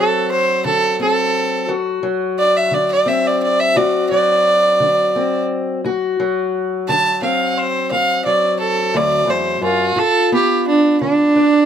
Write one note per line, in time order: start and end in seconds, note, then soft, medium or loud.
0.00 0.22 D2 medium
0.00 2.02 F#3 medium
0.00 0.99 C4 medium
0.00 1.68 F#4 medium
0.00 0.30 A4 medium
0.31 0.64 C5 medium
0.65 1.27 D3 medium
0.65 0.99 A4 medium
1.00 1.72 C4 medium
1.00 1.67 A4 medium
1.68 2.30 D2 medium
1.68 3.76 F#4 medium
2.03 4.10 F#3 medium
2.39 2.58 D5 medium
2.57 2.76 E5 medium
2.71 3.34 D3 medium
2.71 2.89 D5 medium
2.92 3.10 D5 medium
3.06 5.13 C4 medium
3.06 3.28 E5 medium
3.27 3.41 D5 medium
3.43 3.61 D5 medium
3.60 3.78 E5 medium
3.76 4.38 D2 medium
3.76 5.79 F#4 medium
3.76 4.09 D5 medium
4.09 6.18 F#3 medium
4.09 5.44 D5 loud
4.80 5.42 D3 medium
5.16 5.80 C4 medium
5.84 6.46 D2 medium
5.84 7.91 F#4 medium
6.20 8.25 F#3 medium
6.88 7.50 D3 medium
6.88 7.21 A5 medium
7.22 9.93 C4 medium
7.22 7.59 F5 medium
7.58 7.90 C5 medium
7.91 8.53 D2 medium
7.91 8.24 F5 medium
8.25 9.98 F#3 medium
8.25 8.58 D5 medium
8.60 8.98 A4 medium
8.94 9.27 D2 medium
8.94 9.32 D5 medium
9.27 9.61 E2 medium
9.27 9.62 C5 medium
9.61 9.95 F#2 medium
9.61 10.00 F4 medium
9.96 10.58 G2 medium
9.96 11.65 F4 medium
9.96 10.31 A4 medium
10.32 11.65 B3 medium
10.32 10.66 G4 medium
10.68 11.00 D4 medium
11.01 11.63 D3 medium
11.01 11.65 D4 loud
11.36 11.65 D4 medium